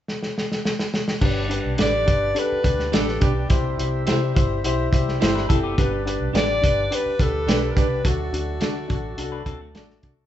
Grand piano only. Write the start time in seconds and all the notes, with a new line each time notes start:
1.21 G2 D4 G4 B4
1.49 D4 G4 B4
1.77 D4 G4 A4
2.06 D4 G4 B4
2.34 D4 G4 A4
2.63 D4 G4 B4
2.91 D4 G4 B4
3.20 D4 G4 B4
3.49 C3 E4 G4 C5
3.78 E4 G4 C5
4.06 E4 G4 C5
4.34 E4 G4 C5
4.64 E4 G4 C5
4.91 E4 G4 C5
5.21 E4 G4 C5
5.49 E4 G4 A4
5.78 G2 D4 G4 B4
6.05 D4 G4 B4
6.33 D4 G4 D5
6.62 D4 G4 B4
6.90 D4 G4 B4
7.19 D4 G4 B4
7.47 D4 G4 B4
7.76 D4 G4 B4
8.04 D3 D4 F#4 A4
8.33 D4 F#4 A4
8.61 D4 F#4 A4
8.88 D4 F#4 A4
9.18 D4 F#4 A4
9.46 D4 F#4 A4
9.74 D4 F#4 A4
10.02 D4 F#4 A4